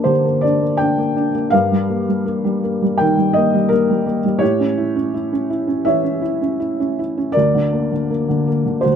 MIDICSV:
0, 0, Header, 1, 2, 480
1, 0, Start_track
1, 0, Tempo, 733496
1, 993, Time_signature, 4, 2, 24, 8
1, 1955, Tempo, 719424
1, 3875, Tempo, 741656
1, 5876, End_track
2, 0, Start_track
2, 0, Title_t, "Felt piano"
2, 0, Program_c, 0, 0
2, 0, Control_c, 0, 64, 127
2, 0, Note_on_c, 0, 43, 51
2, 0, Note_on_c, 0, 58, 35
2, 0, Note_on_c, 0, 62, 47
2, 0, Note_on_c, 0, 70, 48
2, 0, Note_on_c, 0, 74, 71
2, 25, Note_on_c, 0, 72, 64
2, 33, Note_on_c, 0, 50, 49
2, 41, Note_on_c, 0, 67, 41
2, 152, Note_off_c, 0, 58, 0
2, 161, Note_on_c, 0, 58, 44
2, 270, Note_off_c, 0, 74, 0
2, 270, Note_on_c, 0, 74, 72
2, 275, Note_off_c, 0, 62, 0
2, 283, Note_off_c, 0, 72, 0
2, 285, Note_on_c, 0, 62, 46
2, 395, Note_off_c, 0, 58, 0
2, 405, Note_on_c, 0, 58, 38
2, 497, Note_off_c, 0, 74, 0
2, 506, Note_on_c, 0, 79, 78
2, 507, Note_off_c, 0, 62, 0
2, 517, Note_on_c, 0, 62, 48
2, 633, Note_off_c, 0, 58, 0
2, 643, Note_on_c, 0, 58, 42
2, 751, Note_off_c, 0, 62, 0
2, 761, Note_on_c, 0, 62, 46
2, 842, Note_off_c, 0, 79, 0
2, 873, Note_off_c, 0, 58, 0
2, 882, Note_on_c, 0, 58, 42
2, 965, Note_off_c, 0, 50, 0
2, 967, Note_off_c, 0, 43, 0
2, 970, Note_off_c, 0, 67, 0
2, 984, Note_on_c, 0, 77, 83
2, 989, Note_off_c, 0, 62, 0
2, 994, Note_off_c, 0, 58, 0
2, 996, Note_off_c, 0, 70, 0
2, 996, Note_on_c, 0, 70, 60
2, 1001, Control_c, 0, 64, 0
2, 1002, Note_on_c, 0, 43, 56
2, 1123, Control_c, 0, 64, 127
2, 1124, Note_on_c, 0, 55, 45
2, 1241, Note_on_c, 0, 58, 44
2, 1352, Note_off_c, 0, 55, 0
2, 1362, Note_on_c, 0, 55, 39
2, 1469, Note_off_c, 0, 58, 0
2, 1479, Note_on_c, 0, 58, 43
2, 1590, Note_off_c, 0, 55, 0
2, 1599, Note_on_c, 0, 55, 52
2, 1712, Note_off_c, 0, 58, 0
2, 1722, Note_on_c, 0, 58, 48
2, 1836, Note_off_c, 0, 55, 0
2, 1846, Note_on_c, 0, 55, 42
2, 1928, Note_off_c, 0, 70, 0
2, 1947, Note_on_c, 0, 79, 77
2, 1962, Note_on_c, 0, 70, 55
2, 1965, Note_on_c, 0, 51, 55
2, 1978, Note_off_c, 0, 77, 0
2, 2072, Note_off_c, 0, 55, 0
2, 2082, Note_on_c, 0, 55, 47
2, 2175, Note_off_c, 0, 79, 0
2, 2186, Note_on_c, 0, 75, 81
2, 2195, Note_off_c, 0, 58, 0
2, 2205, Note_on_c, 0, 58, 51
2, 2314, Note_off_c, 0, 55, 0
2, 2324, Note_on_c, 0, 55, 43
2, 2411, Note_off_c, 0, 70, 0
2, 2421, Note_on_c, 0, 70, 76
2, 2433, Note_off_c, 0, 58, 0
2, 2435, Note_off_c, 0, 75, 0
2, 2443, Note_on_c, 0, 58, 50
2, 2552, Note_off_c, 0, 55, 0
2, 2562, Note_on_c, 0, 55, 45
2, 2662, Note_off_c, 0, 58, 0
2, 2672, Note_on_c, 0, 58, 48
2, 2755, Note_off_c, 0, 70, 0
2, 2783, Note_off_c, 0, 55, 0
2, 2793, Note_on_c, 0, 55, 46
2, 2883, Note_off_c, 0, 43, 0
2, 2884, Note_off_c, 0, 51, 0
2, 2888, Note_on_c, 0, 73, 77
2, 2900, Note_off_c, 0, 58, 0
2, 2902, Note_on_c, 0, 67, 62
2, 2903, Note_on_c, 0, 45, 64
2, 2905, Note_off_c, 0, 55, 0
2, 2914, Control_c, 0, 64, 0
2, 3024, Control_c, 0, 64, 127
2, 3031, Note_on_c, 0, 61, 51
2, 3148, Note_on_c, 0, 64, 46
2, 3259, Note_off_c, 0, 61, 0
2, 3269, Note_on_c, 0, 61, 46
2, 3381, Note_off_c, 0, 64, 0
2, 3391, Note_on_c, 0, 64, 46
2, 3505, Note_off_c, 0, 61, 0
2, 3515, Note_on_c, 0, 61, 50
2, 3622, Note_off_c, 0, 64, 0
2, 3632, Note_on_c, 0, 64, 53
2, 3738, Note_off_c, 0, 61, 0
2, 3748, Note_on_c, 0, 61, 50
2, 3845, Note_off_c, 0, 67, 0
2, 3863, Note_on_c, 0, 76, 76
2, 3865, Note_off_c, 0, 73, 0
2, 3872, Note_on_c, 0, 52, 54
2, 3875, Note_on_c, 0, 73, 53
2, 3976, Note_off_c, 0, 61, 0
2, 3986, Note_on_c, 0, 61, 46
2, 4093, Note_off_c, 0, 64, 0
2, 4103, Note_on_c, 0, 64, 55
2, 4223, Note_off_c, 0, 61, 0
2, 4232, Note_on_c, 0, 61, 44
2, 4339, Note_off_c, 0, 64, 0
2, 4348, Note_on_c, 0, 64, 46
2, 4470, Note_off_c, 0, 61, 0
2, 4480, Note_on_c, 0, 61, 43
2, 4593, Note_off_c, 0, 64, 0
2, 4602, Note_on_c, 0, 64, 48
2, 4712, Note_off_c, 0, 61, 0
2, 4722, Note_on_c, 0, 61, 42
2, 4802, Note_off_c, 0, 45, 0
2, 4802, Note_off_c, 0, 52, 0
2, 4803, Note_off_c, 0, 73, 0
2, 4818, Note_on_c, 0, 74, 83
2, 4828, Note_off_c, 0, 64, 0
2, 4830, Note_on_c, 0, 70, 60
2, 4831, Note_off_c, 0, 61, 0
2, 4837, Control_c, 0, 64, 0
2, 4846, Note_on_c, 0, 38, 57
2, 4852, Note_off_c, 0, 76, 0
2, 4962, Note_on_c, 0, 50, 49
2, 4969, Control_c, 0, 64, 127
2, 5079, Note_on_c, 0, 58, 48
2, 5195, Note_off_c, 0, 50, 0
2, 5205, Note_on_c, 0, 50, 39
2, 5313, Note_off_c, 0, 58, 0
2, 5323, Note_on_c, 0, 58, 47
2, 5433, Note_off_c, 0, 50, 0
2, 5443, Note_on_c, 0, 50, 46
2, 5552, Note_off_c, 0, 58, 0
2, 5562, Note_on_c, 0, 58, 44
2, 5674, Note_off_c, 0, 50, 0
2, 5684, Note_on_c, 0, 50, 40
2, 5766, Note_off_c, 0, 70, 0
2, 5774, Note_off_c, 0, 38, 0
2, 5780, Note_on_c, 0, 72, 64
2, 5790, Note_on_c, 0, 66, 42
2, 5792, Note_off_c, 0, 58, 0
2, 5795, Note_off_c, 0, 50, 0
2, 5801, Control_c, 0, 64, 0
2, 5810, Note_on_c, 0, 38, 47
2, 5815, Note_off_c, 0, 74, 0
2, 5876, Note_off_c, 0, 38, 0
2, 5876, Note_off_c, 0, 66, 0
2, 5876, Note_off_c, 0, 72, 0
2, 5876, End_track
0, 0, End_of_file